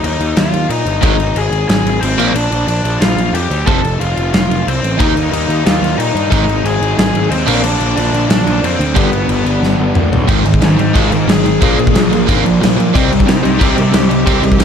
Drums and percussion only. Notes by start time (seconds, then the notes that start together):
0.04 crash
0.20 crash
0.37 snare, crash
0.53 crash
0.70 crash
0.86 crash
1.02 kick, crash
1.20 crash
1.36 crash
1.52 crash
1.69 snare, crash
1.86 crash
2.03 crash
2.19 crash
2.35 crash
2.52 crash
2.68 crash
2.85 crash
3.01 snare, crash
3.18 crash
3.35 crash
3.51 crash
3.67 kick, crash
3.84 crash
4.01 crash
4.17 crash
4.34 snare, crash
4.51 crash
4.68 crash
4.84 crash
5.00 kick, crash
5.17 crash
5.33 crash
5.50 crash
5.66 snare, crash
5.84 crash
6.00 crash
6.17 crash
6.32 kick, crash
6.49 crash
6.65 crash
6.82 crash
6.99 snare, crash
7.15 crash
7.31 crash
7.48 crash
7.64 crash
7.80 crash
7.97 crash
8.14 crash
8.30 snare, crash
8.47 crash
8.64 crash
8.81 crash
8.96 kick, crash
9.13 crash
9.29 crash
9.46 crash
9.63 snare
9.95 mid tom
10.13 floor tom
10.29 kick, crash
10.45 crash
10.54 kick
10.62 snare, crash
10.79 crash
10.95 kick, crash
11.12 crash
11.29 snare, crash
11.46 crash
11.62 kick, crash
11.79 crash
11.87 kick
11.95 snare, crash
12.13 crash
12.29 kick, crash
12.46 crash
12.63 snare, crash
12.80 crash
12.95 kick, crash
13.12 crash
13.20 kick
13.28 snare, crash
13.45 crash
13.61 kick, crash
13.78 crash
13.94 snare, crash
14.11 crash
14.27 kick, crash
14.43 crash
14.52 kick
14.60 snare, crash